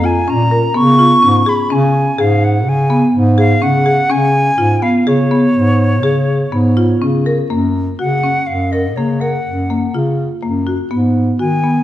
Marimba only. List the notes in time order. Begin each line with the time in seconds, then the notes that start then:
0.04 F4
0.28 C#4
0.51 A#4
0.74 B3
0.99 F4
1.22 C#4
1.46 G#4
1.70 C#4
2.18 G#4
2.90 B3
3.38 G#4
3.62 C#4
3.86 G#4
4.10 C#4
4.58 F4
4.82 B3
5.07 G#4
5.31 B3
6.03 G#4
6.52 B3
6.77 F4
7.02 C#4
7.26 A#4
7.50 A#3
7.99 F#4
8.23 C#4
8.73 A#4
8.98 A#3
9.21 A#4
9.70 A#3
9.94 F4
10.42 A#3
10.67 F#4
10.91 B3
11.39 F#4
11.63 B3